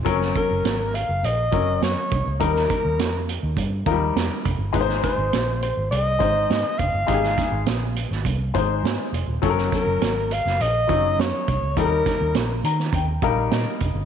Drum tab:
HH |x-x-x-x-x-x-x-x-|x-x-x-x-x-x-x-x-|x-x-x-x-x-x-x-x-|x-x-x-x-x-x-x-x-|
SD |-o--o-------o---|-o--o-------o---|-oo-o-------o---|-oo-o--o----o---|
BD |o-o-------o---o-|o-o-----o-o---o-|o-o-------o---o-|o-o-----o-o-----|

HH |x-x-x-x-x-x-x-x-|x-x-x-x-x-x-x-x-|
SD |-oo-o--o----o---|--o-o--o----o---|
BD |o-o-------o---o-|o-o-----o-o---o-|